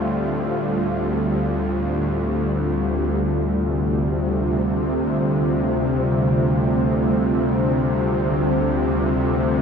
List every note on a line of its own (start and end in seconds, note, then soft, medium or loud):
0.00 3.21 D2 medium
0.00 3.31 A2 medium
0.00 9.62 D3 medium
0.00 9.62 G3 medium
0.00 9.62 A3 medium
0.00 9.62 C4 medium
0.00 9.62 F4 medium
0.00 3.22 A4 medium
3.22 9.62 D2 medium
3.22 9.62 C3 medium
3.22 9.62 A4 medium